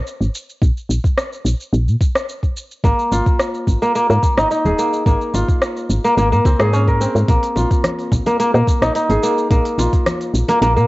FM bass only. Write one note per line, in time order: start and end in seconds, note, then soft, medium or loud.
0.21 0.29 G#1 medium
0.62 0.71 A#1 medium
0.89 0.99 A#1 medium
1.45 1.54 A#1 medium
1.73 1.89 A#1 loud
1.87 1.96 A#2 medium
2.84 2.93 G#1 loud
3.12 3.21 G#1 medium
3.67 3.77 G#1 medium
4.10 4.18 G#2 loud
4.37 4.46 G#1 medium
4.65 4.74 D#1 medium
5.06 5.15 G#1 loud
5.34 5.43 G#1 medium
5.89 5.99 G#1 medium
6.17 6.33 G#1 medium
6.32 6.40 G#2 medium
6.45 6.54 C#2 medium
6.59 7.07 G#2 medium
7.15 7.24 G#2 medium
7.28 7.38 A#1 medium
7.56 7.66 A#1 medium
8.12 8.21 A#1 medium
8.54 8.63 A#2 loud
8.82 8.90 A#1 medium
9.09 9.18 G#1 medium
9.51 9.60 A#1 medium
9.78 9.88 A#1 medium
10.34 10.43 A#1 medium
10.62 10.78 A#1 loud
10.76 10.85 A#2 medium